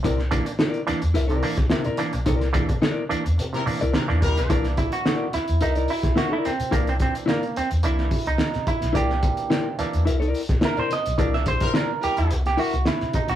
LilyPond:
<<
  \new Staff \with { instrumentName = "Clean electric guitar" } { \time 4/4 \key c \mixolydian \tempo 4 = 108 <e' bes' d''>16 r8. <e' bes' d''>16 r8. <e' bes' e''>16 <e' bes' d''>16 r8 <e' bes' e''>16 <e' bes' d''>16 r8 | <e' bes' d''>16 r8. <e' bes' d''>16 r4. <e' bes' d''>16 r4 | <e' bes' d''>16 r8. <e' bes' d''>16 r8. <e' bes' e''>16 <e' bes' d''>16 r8 <e' bes' e''>16 <e' bes' d''>16 r8 | <e' bes' d''>16 r8. <e' bes' d''>16 r2 r8. |
<e' bes' d''>16 r8. <e' bes' d''>16 r8. <e' bes' e''>16 <e' bes' d''>16 r8 <e' bes' e''>16 <e' bes' d''>16 r8 | <e' bes' d''>16 r8. <e' bes' d''>16 r4 r16 <e' bes' e''>16 r4 r16 | }
  \new Staff \with { instrumentName = "Horn section" } { \time 4/4 \key c \mixolydian r1 | r2 r16 <g e' bes'>16 r8 <g e' bes'>16 r16 <g e' bes'>8~ | <g e' bes'>16 r2. r8. | r1 |
r1 | r8. <g e' bes'>16 r8 <g e' bes'>8. r4. r16 | }
  \new Staff \with { instrumentName = "Clav" } { \time 4/4 \key c \mixolydian r8 <e bes d'>16 <bes d'>16 r8 <e bes d'>16 r16 <bes d'>16 r16 <e bes d'>16 r8. <e bes d'>16 <bes d'>16 | r8 <e bes d'>16 <bes d'>16 r8 <e bes d'>16 r16 <bes d'>16 r16 <e bes d'>16 r8 <e bes d'>16 <bes d'>16 r16 | r8 e'16 fis'8. e'8 ees'8 e'8 fis'16 e'16 c'8 | r16 c'16 c'8 bes8 c'8 e'8. ees'8. e'8 |
g'4. r4. bes'16 c''16 ees''8~ | ees''16 e''16 c''8 bes'8 g'16 e'8 g'16 fis'8 e'8 ees'16 fis'16 | }
  \new Staff \with { instrumentName = "Clav" } { \clef bass \time 4/4 \key c \mixolydian c16 r2 c16 r8 c16 r8. | c16 r2 c16 r8 c16 r8. | <e bes d'>4. r2 r8 | <e bes d'>4. r8 <e bes d'>8 r4. |
<e bes d'>4. <e bes d'>8 r2 | <e bes d'>1 | }
  \new Staff \with { instrumentName = "Fingered electric bass" } { \clef bass \time 4/4 \key c \mixolydian c,8. r4 e,16 c,8 r16 c,16 r16 c16 r16 b,,16 | c,8. r4 e,16 c16 r16 c16 c,16 r16 e,16 ees,16 b,,16 | c,8. r4 e,16 c,8 r16 c,16 r8. c16 | c,8. r4 e,16 c,8 r16 c,16 r16 c16 r16 b,,16 |
c,8. r4 e,16 c,8 r16 c,16 r16 c16 r16 b,,16 | c,8. r4 e,16 c,8 r16 c,16 r16 c16 r16 b,,16 | }
  \new DrumStaff \with { instrumentName = "Drums" } \drummode { \time 4/4 <hh bd>16 sn16 <hh bd>16 hh16 sn16 hh16 <hh sn>16 hh16 hh16 hh16 hho16 <hh bd sn>16 sn16 hh16 <hh sn>16 hh16 | <hh bd>16 <hh sn>16 <hh bd>16 <hh bd>16 sn8 hh16 hh16 hh16 <hh sn>16 hho16 hh16 sn16 sn16 <hh bd>16 <hh sn>16 | <hh bd>16 <hh sn>16 <hh bd>16 hh16 sn8 <hh sn>16 hh16 hh16 hh16 hho16 <hh bd sn>16 sn8 <hh sn>16 hh16 | <hh bd>16 hh16 <hh bd>16 hh16 sn16 hh16 hh16 hh16 hh16 sn16 <hho bd>16 hh16 sn16 <hh sn>16 <hh bd>16 <hh sn>16 |
<hh bd>16 sn16 <hh bd>16 hh16 sn8 <hh sn>16 hh16 hh16 hh16 hho16 <hh bd sn>16 sn16 hh16 <hh sn>16 hh16 | <hh bd>16 sn16 <hh bd>16 <hh bd>16 sn8 hh16 hh16 hh16 <hh sn>16 hho16 hh16 sn16 <hh sn>16 <hh bd>16 <hh sn>16 | }
>>